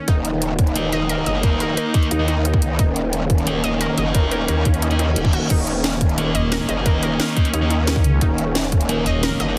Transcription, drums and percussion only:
0.08 kick, closed hi-hat
0.25 closed hi-hat
0.42 closed hi-hat
0.59 kick, closed hi-hat
0.67 closed hi-hat
0.76 closed hi-hat
0.92 closed hi-hat
1.09 closed hi-hat
1.26 closed hi-hat
1.43 kick, closed hi-hat
1.60 closed hi-hat
1.77 closed hi-hat
1.94 kick, closed hi-hat
2.03 closed hi-hat
2.11 closed hi-hat
2.28 closed hi-hat
2.45 closed hi-hat
2.54 kick
2.62 closed hi-hat
2.79 kick, closed hi-hat
2.96 closed hi-hat
3.13 closed hi-hat
3.30 kick, closed hi-hat
3.38 closed hi-hat
3.47 closed hi-hat
3.64 closed hi-hat
3.81 closed hi-hat
3.98 closed hi-hat
4.15 kick, closed hi-hat
4.31 closed hi-hat
4.48 closed hi-hat
4.65 kick, closed hi-hat
4.74 closed hi-hat
4.82 closed hi-hat
4.91 closed hi-hat
4.99 closed hi-hat
5.16 closed hi-hat
5.25 kick
5.33 closed hi-hat
5.50 kick, closed hi-hat, crash
5.67 closed hi-hat
5.84 snare, closed hi-hat
6.01 kick, closed hi-hat
6.09 closed hi-hat
6.18 closed hi-hat
6.35 closed hi-hat
6.52 snare, closed hi-hat
6.69 closed hi-hat
6.86 kick, closed hi-hat
7.03 closed hi-hat
7.20 snare, closed hi-hat
7.37 kick, closed hi-hat
7.45 closed hi-hat
7.54 closed hi-hat
7.70 closed hi-hat
7.87 snare, closed hi-hat
7.96 kick
8.04 closed hi-hat
8.21 kick, closed hi-hat
8.38 closed hi-hat
8.55 snare, closed hi-hat
8.72 kick, closed hi-hat
8.81 closed hi-hat
8.89 closed hi-hat
9.06 closed hi-hat
9.23 snare, closed hi-hat
9.40 closed hi-hat

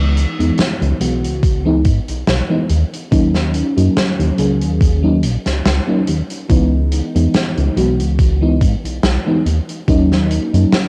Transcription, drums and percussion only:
0.17 closed hi-hat
0.40 closed hi-hat
0.58 snare, closed hi-hat
0.82 closed hi-hat
1.01 closed hi-hat
1.24 closed hi-hat
1.43 kick, closed hi-hat
1.85 kick, closed hi-hat
2.08 closed hi-hat
2.27 snare, closed hi-hat
2.69 closed hi-hat
2.93 closed hi-hat
3.12 kick, closed hi-hat
3.34 snare
3.54 closed hi-hat
3.77 closed hi-hat
3.96 snare, closed hi-hat
4.20 closed hi-hat
4.38 closed hi-hat
4.61 closed hi-hat
4.81 kick, closed hi-hat
5.23 closed hi-hat
5.46 snare, closed hi-hat
5.65 snare, closed hi-hat
6.07 closed hi-hat
6.30 closed hi-hat
6.50 kick, closed hi-hat
6.92 closed hi-hat
7.16 closed hi-hat
7.34 snare, closed hi-hat
7.57 closed hi-hat
7.77 closed hi-hat
8.00 closed hi-hat
8.19 kick, closed hi-hat
8.61 kick, closed hi-hat
8.85 closed hi-hat
9.03 snare, closed hi-hat
9.46 closed hi-hat
9.69 closed hi-hat
9.88 kick, closed hi-hat
10.12 snare
10.31 closed hi-hat
10.54 closed hi-hat
10.72 snare, closed hi-hat

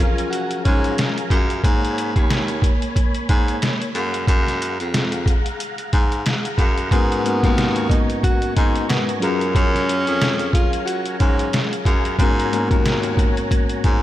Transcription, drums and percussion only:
0.00 closed hi-hat
0.18 closed hi-hat
0.33 closed hi-hat
0.51 closed hi-hat
0.65 kick, closed hi-hat
0.84 closed hi-hat
0.98 snare, closed hi-hat
1.18 closed hi-hat
1.30 kick, closed hi-hat
1.50 closed hi-hat
1.64 kick, closed hi-hat
1.85 closed hi-hat
1.98 closed hi-hat
2.16 kick, closed hi-hat
2.30 snare, closed hi-hat
2.48 closed hi-hat
2.62 kick, closed hi-hat
2.82 closed hi-hat
2.96 kick, closed hi-hat
3.15 closed hi-hat
3.29 kick, closed hi-hat
3.48 closed hi-hat
3.62 snare, closed hi-hat
3.82 closed hi-hat
3.95 closed hi-hat
4.14 closed hi-hat
4.28 kick, closed hi-hat
4.47 snare, closed hi-hat
4.62 closed hi-hat
4.80 closed hi-hat
4.94 snare, closed hi-hat
5.12 closed hi-hat
5.26 kick, closed hi-hat
5.46 closed hi-hat
5.60 closed hi-hat
5.78 closed hi-hat
5.93 kick, closed hi-hat
6.12 closed hi-hat
6.26 snare, closed hi-hat
6.45 closed hi-hat
6.58 kick, closed hi-hat
6.78 closed hi-hat
6.91 kick, closed hi-hat
7.12 closed hi-hat
7.26 closed hi-hat
7.43 kick, closed hi-hat
7.58 snare, closed hi-hat
7.76 closed hi-hat
7.90 kick, closed hi-hat
8.10 closed hi-hat
8.23 kick, closed hi-hat
8.42 closed hi-hat
8.57 kick, closed hi-hat
8.75 closed hi-hat
8.89 snare, closed hi-hat
9.09 closed hi-hat
9.22 closed hi-hat
9.41 closed hi-hat
9.55 kick, closed hi-hat
9.74 snare, closed hi-hat
9.89 closed hi-hat
10.07 closed hi-hat
10.21 snare, closed hi-hat
10.39 closed hi-hat
10.53 kick, closed hi-hat
10.73 closed hi-hat
10.88 closed hi-hat
11.06 closed hi-hat
11.20 kick, closed hi-hat
11.39 closed hi-hat
11.53 snare, closed hi-hat
11.73 closed hi-hat
11.85 kick, closed hi-hat
12.05 closed hi-hat
12.19 kick, closed hi-hat
12.40 closed hi-hat
12.53 closed hi-hat
12.71 kick, closed hi-hat
12.86 snare, closed hi-hat
13.03 closed hi-hat
13.17 kick, closed hi-hat
13.37 closed hi-hat
13.51 kick, closed hi-hat
13.69 closed hi-hat
13.84 kick, closed hi-hat

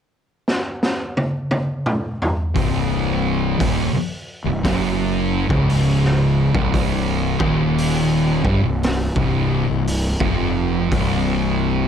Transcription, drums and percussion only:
0.48 snare
0.83 snare
1.17 high tom
1.51 high tom
1.86 mid tom
2.22 floor tom
2.56 kick, open hi-hat
3.60 kick, open hi-hat
4.65 kick, snare, open hi-hat
5.50 kick
5.69 open hi-hat
6.04 snare
6.55 kick
6.74 kick, open hi-hat
7.40 kick
7.78 open hi-hat
8.45 kick
8.83 snare, open hi-hat
9.16 kick
9.87 open hi-hat
10.20 kick
10.92 kick, open hi-hat

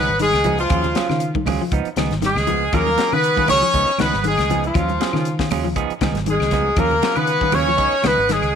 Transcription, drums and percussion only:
0.19 closed hi-hat, high conga
0.33 snare, closed hi-hat, claves
0.44 closed hi-hat, high conga, low conga
0.58 closed hi-hat
0.70 kick, closed hi-hat, claves
0.84 closed hi-hat, low conga
0.95 snare, closed hi-hat, high conga
1.09 snare, claves
1.20 closed hi-hat
1.35 kick, high conga
1.46 open hi-hat, high conga, low conga, claves
1.72 kick, closed hi-hat
1.85 closed hi-hat
1.96 snare, closed hi-hat, high conga, claves
2.11 snare, closed hi-hat
2.22 snare, closed hi-hat, high conga
2.36 snare, claves
2.47 closed hi-hat, low conga
2.73 kick, closed hi-hat, claves
2.87 high conga
2.98 snare, closed hi-hat, high conga
3.12 closed hi-hat, claves
3.24 closed hi-hat
3.36 kick, high conga
3.48 open hi-hat, high conga, low conga, claves
3.74 kick, closed hi-hat
3.98 snare, closed hi-hat, high conga, claves
4.12 snare, high conga
4.24 closed hi-hat, high conga
4.38 snare, closed hi-hat, claves
4.50 closed hi-hat, low conga
4.64 closed hi-hat
4.74 kick, closed hi-hat, claves
4.89 closed hi-hat, high conga
5.01 snare, closed hi-hat, high conga
5.13 snare, claves
5.25 closed hi-hat
5.39 kick, snare
5.50 open hi-hat, high conga, low conga, claves
5.76 kick, closed hi-hat
5.90 closed hi-hat
6.01 kick, snare, closed hi-hat, high conga, claves
6.15 snare, closed hi-hat, high conga
6.26 closed hi-hat, high conga
6.40 snare, claves
6.51 kick, snare, closed hi-hat, high conga, low conga
6.76 kick, closed hi-hat, claves
6.91 low conga
7.02 snare, closed hi-hat, high conga
7.16 closed hi-hat, claves
7.27 closed hi-hat
7.41 kick, high conga
7.52 open hi-hat, high conga, low conga, claves
7.78 kick, closed hi-hat
8.03 snare, closed hi-hat, high conga, claves
8.29 snare, closed hi-hat, high conga
8.42 closed hi-hat, claves

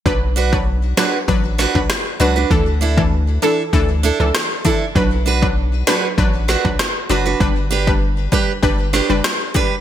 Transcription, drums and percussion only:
0.06 kick
0.53 kick
0.97 cross-stick, snare
1.28 kick
1.59 snare
1.75 kick
1.90 cross-stick, snare
2.51 kick
2.98 kick
3.73 kick
4.35 cross-stick, snare
4.65 kick
4.96 kick
5.43 kick
5.87 cross-stick, snare
6.18 kick
6.49 snare
6.65 kick
6.79 cross-stick, snare
7.41 kick
7.87 kick
8.32 kick
8.63 kick
8.94 snare
9.24 cross-stick, snare
9.55 kick

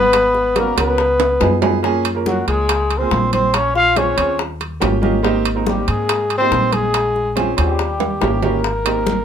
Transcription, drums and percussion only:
0.13 high bongo, high conga, high timbale
0.35 high bongo, high conga
0.56 high bongo, high conga, high timbale
0.77 high conga, high timbale
0.98 high bongo, high conga
1.20 high bongo, high conga, high timbale
1.41 high bongo, low bongo, high conga, low timbale
1.62 high bongo, high conga, low timbale
1.84 high bongo, high conga
2.05 high conga, high timbale
2.26 high bongo, high conga
2.48 high conga, high timbale
2.69 high bongo, high conga, high timbale
2.90 high conga, high timbale
3.11 high bongo, low bongo, high conga
3.33 high conga, high timbale
3.54 high bongo, high conga, high timbale
3.75 high bongo, high conga
3.96 high bongo, high conga, high timbale
4.18 high conga, high timbale
4.39 high bongo, high conga
4.60 high bongo, high conga, high timbale
4.82 high bongo, low bongo, high conga, high timbale, low timbale
5.03 high bongo, high conga
5.24 high bongo, high conga
5.45 high conga, high timbale
5.66 high bongo, high conga
5.88 high conga, high timbale
6.09 high bongo, high conga, high timbale
6.30 high conga, high timbale
6.52 high bongo, low bongo, high conga
6.73 high conga, high timbale
6.94 high bongo, high conga, high timbale
7.15 high bongo, high conga
7.37 high bongo, high conga, high timbale
7.58 high conga, high timbale
7.79 high bongo, high conga
8.00 high bongo, high conga, high timbale
8.22 high bongo, low bongo, low timbale
8.43 high bongo, low conga, low timbale
8.64 high bongo, high conga
8.86 high conga, high timbale
9.06 high bongo, high conga

